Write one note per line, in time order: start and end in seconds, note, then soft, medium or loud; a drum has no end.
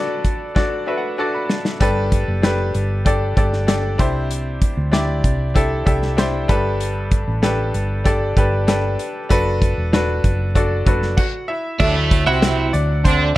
0.00 0.55 D4 loud
0.00 0.55 F#4 medium
0.00 0.56 A4 medium
0.00 0.88 B4 loud
0.00 0.45 D5 medium
0.25 kick medium
0.25 closed hi-hat medium
0.55 0.81 D4 medium
0.55 0.81 F#4 medium
0.55 0.82 A4 medium
0.55 0.82 D5 medium
0.55 kick medium
0.55 snare soft
0.87 1.13 D4 medium
0.87 1.13 F#4 medium
0.87 1.13 A4 medium
0.87 1.13 B4 medium
0.87 0.97 E5 medium
0.97 1.17 F#5 medium
1.18 1.70 D4 medium
1.18 1.70 F#4 medium
1.18 1.70 A4 medium
1.18 1.71 D5 medium
1.18 1.33 A5 medium
1.34 1.78 B5 medium
1.50 snare medium
1.65 snare medium
1.80 2.24 G1 medium
1.80 2.71 G3 medium
1.80 2.32 D4 medium
1.80 2.32 G4 medium
1.80 2.33 A4 medium
1.80 2.33 B4 loud
1.80 kick loud
1.80 closed hi-hat medium
2.12 kick medium
2.12 closed hi-hat medium
2.28 2.71 F#1 medium
2.42 2.94 D4 medium
2.42 2.95 G4 medium
2.42 2.95 A4 medium
2.42 2.95 B4 medium
2.42 snare medium
2.42 closed hi-hat medium
2.74 3.33 G1 medium
2.74 closed hi-hat medium
3.05 3.31 D4 medium
3.05 3.31 G4 medium
3.05 3.32 A4 medium
3.05 3.32 D5 medium
3.05 kick medium
3.05 closed hi-hat medium
3.36 3.95 G1 medium
3.36 3.62 D4 medium
3.36 3.62 G4 medium
3.36 3.63 A4 medium
3.36 3.63 D5 medium
3.36 kick medium
3.36 closed hi-hat medium
3.53 snare soft
3.67 3.97 D4 medium
3.67 3.98 G4 medium
3.67 3.99 A4 medium
3.67 4.00 D5 medium
3.67 snare medium
3.67 closed hi-hat medium
3.98 4.58 C2 medium
3.98 4.89 C3 medium
3.98 4.76 D4 medium
3.98 4.76 E4 medium
3.98 4.77 G4 medium
3.98 4.77 C5 medium
3.98 kick medium
3.98 closed hi-hat medium
4.31 closed hi-hat medium
4.62 kick medium
4.62 closed hi-hat medium
4.77 5.21 D2 medium
4.92 5.44 D4 medium
4.92 5.44 E4 medium
4.92 5.45 G4 medium
4.92 5.45 D5 medium
4.92 snare medium
4.92 closed hi-hat medium
5.24 5.83 C2 medium
5.24 kick medium
5.24 closed hi-hat medium
5.54 5.81 D4 medium
5.54 5.81 E4 medium
5.54 5.81 G4 medium
5.54 5.82 A4 medium
5.54 kick medium
5.54 closed hi-hat medium
5.86 6.45 C2 medium
5.86 6.12 D4 medium
5.86 6.12 E4 medium
5.86 6.13 G4 medium
5.86 6.13 A4 medium
5.86 6.16 E5 medium
5.86 kick medium
5.86 closed hi-hat medium
6.02 snare soft
6.17 6.47 D4 medium
6.17 6.49 E4 medium
6.17 6.47 G4 medium
6.17 6.50 C5 medium
6.17 6.47 G5 medium
6.17 snare loud
6.17 closed hi-hat medium
6.48 7.23 G1 medium
6.48 7.39 G2 medium
6.48 7.26 D4 medium
6.48 7.26 G4 medium
6.48 7.27 A4 medium
6.48 7.27 B4 medium
6.48 6.78 B5 medium
6.48 kick medium
6.48 closed hi-hat medium
6.81 closed hi-hat medium
7.11 kick medium
7.11 closed hi-hat medium
7.28 7.71 A1 medium
7.42 7.94 D4 medium
7.42 7.95 G4 medium
7.42 7.95 A4 medium
7.42 7.95 B4 medium
7.42 snare medium
7.42 closed hi-hat medium
7.74 8.33 G1 medium
7.74 closed hi-hat medium
8.04 8.31 D4 medium
8.04 8.31 G4 medium
8.04 8.31 A4 medium
8.04 8.32 D5 medium
8.04 kick medium
8.04 closed hi-hat medium
8.36 8.95 G1 medium
8.36 8.62 D4 medium
8.36 8.63 G4 medium
8.36 8.63 A4 medium
8.36 8.63 B4 medium
8.36 kick medium
8.36 closed hi-hat medium
8.67 9.19 D4 medium
8.67 9.20 G4 medium
8.67 9.20 A4 medium
8.67 9.20 B4 medium
8.67 snare medium
8.67 closed hi-hat medium
8.99 closed hi-hat medium
9.29 9.74 F#1 medium
9.29 9.82 D4 medium
9.29 9.82 F#4 medium
9.29 9.82 A4 medium
9.29 9.82 B4 loud
9.29 kick medium
9.29 closed hi-hat medium
9.62 kick medium
9.62 closed hi-hat medium
9.78 10.21 E1 medium
9.93 10.44 D4 medium
9.93 10.45 F#4 medium
9.93 10.45 A4 medium
9.93 10.45 B4 medium
9.93 snare medium
9.93 closed hi-hat medium
10.24 10.83 F#1 medium
10.24 kick medium
10.24 closed hi-hat medium
10.55 10.81 D4 medium
10.55 10.81 F#4 medium
10.55 10.81 A4 medium
10.55 10.82 D5 medium
10.55 kick medium
10.55 closed hi-hat medium
10.86 11.16 F#1 medium
10.86 11.12 D4 medium
10.86 11.12 F#4 medium
10.86 11.13 A4 medium
10.86 11.13 B4 medium
10.86 kick medium
10.86 closed hi-hat medium
11.02 snare soft
11.17 11.48 F#4 medium
11.17 11.50 F#5 medium
11.17 kick medium
11.17 crash medium
11.48 11.79 E4 medium
11.48 11.78 E5 medium
11.79 12.24 D2 loud
11.79 12.24 A2 medium
11.79 12.22 F#3 medium
11.79 12.24 A3 loud
11.79 11.95 D4 loud
11.79 12.22 D4 medium
11.79 12.24 E4 medium
11.79 12.28 E5 medium
11.79 kick loud
11.79 crash loud
12.11 kick medium
12.11 closed hi-hat medium
12.27 12.71 C2 medium
12.27 12.71 C3 medium
12.27 12.71 C4 medium
12.27 12.71 E4 medium
12.27 12.71 F#4 medium
12.27 12.70 F#5 loud
12.42 snare loud
12.42 closed hi-hat medium
12.73 13.32 D2 loud
12.73 13.03 D4 medium
12.73 13.06 D5 medium
12.73 closed hi-hat medium
13.04 13.30 D3 loud
13.04 13.35 C4 medium
13.04 13.30 D4 loud
13.04 13.34 C5 medium
13.04 kick medium
13.04 closed hi-hat medium